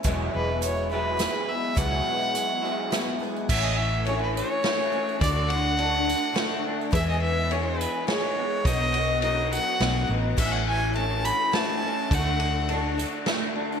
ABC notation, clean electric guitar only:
X:1
M:3/4
L:1/8
Q:1/4=105
K:E
V:1 name="Clean electric guitar" clef=bass
[E,,B,,F,G,B,E]3 [E,,B,,F,G,B,E]3 | [E,,B,,F,G,B,E]3 [E,,B,,F,G,B,E]3 | A,, E, C E, A, C | =D, D, =D D, A, D |
E,, E, B, E, G, B, | B,, F, D F, B, D | A,, E, C E, A, C | =D, D, =D D, A, D |]